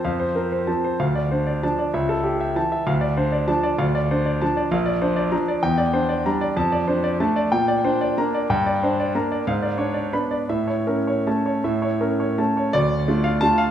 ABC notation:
X:1
M:3/4
L:1/8
Q:1/4=188
K:Dm
V:1 name="Grand piano"
[cf] c B c a c | f d c d a d | e A G e a e | f d c d a d |
f d c d a d | f d c d b d | g d c d b d | a d c d a d |
g d c d b d | g d c d b d | ^e d ^c d =b d | e ^c B c a c |
e ^c B c a c | d3 f a f |]
V:2 name="Grand piano"
F,,2 C2 [F,C]2 | D,,2 D2 [F,D]2 | ^C,,2 z2 E,2 | D,,2 D2 [F,D]2 |
D,,2 D2 [F,D]2 | B,,,2 D2 [F,D]2 | E,,2 D2 [G,D]2 | F,,2 D2 [A,D]2 |
B,,2 D2 [B,D]2 | G,,2 D2 [B,D]2 | ^G,,2 D2 [=B,D]2 | A,,2 ^C2 [A,C]2 |
A,,2 ^C2 [A,C]2 | D,,2 [A,DF]2 [A,DF]2 |]